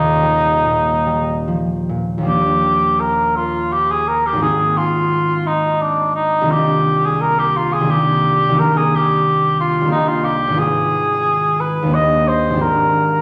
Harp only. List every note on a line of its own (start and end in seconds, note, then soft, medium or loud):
0.00 2.31 D#1 soft
0.00 2.17 D#2 soft
0.00 1.46 F3 soft
0.00 0.21 G3 soft
0.22 1.05 G3 soft
0.64 1.88 A#2 soft
1.06 2.21 G3 soft
1.48 2.19 F3 soft
1.89 2.31 A#2 soft
2.18 4.40 D#2 soft
2.18 4.41 F3 soft
2.22 4.42 G3 soft
2.22 4.36 A#3 soft
2.27 4.44 D4 soft
4.33 6.50 G#1 soft
4.33 6.42 D#3 soft
4.33 6.44 A#3 soft
4.39 8.29 C4 soft
4.39 8.31 D#4 soft
6.41 7.79 C2 soft
6.41 7.81 D#3 soft
6.46 7.83 A#3 soft
6.46 7.85 D4 soft
6.46 7.87 F4 soft
7.80 8.48 C2 soft
7.80 8.50 D#3 soft
7.84 8.52 A#3 soft
7.84 8.54 D4 soft
7.89 8.61 F4 soft
8.49 9.80 C2 soft
8.49 9.81 D#3 soft
8.53 9.84 A#3 soft
8.53 9.86 D4 soft
8.57 9.88 G4 soft
9.81 10.55 C2 soft
9.81 10.48 D#3 soft
9.85 10.57 A#3 soft
9.85 10.58 D4 soft
9.89 10.60 G4 soft
10.47 11.91 G#1 soft
10.47 11.83 D#3 soft
10.52 11.93 B3 soft
10.52 13.22 D#4 soft
10.52 11.95 F4 soft
11.82 12.57 D#2 soft
11.82 12.50 D#3 soft
11.86 12.59 A#3 soft
11.86 12.54 D4 soft
11.91 12.56 G4 soft
12.50 13.22 G#1 soft
12.50 13.22 D#3 soft
12.50 13.22 C4 soft
12.56 13.22 D4 soft
12.56 13.22 G4 soft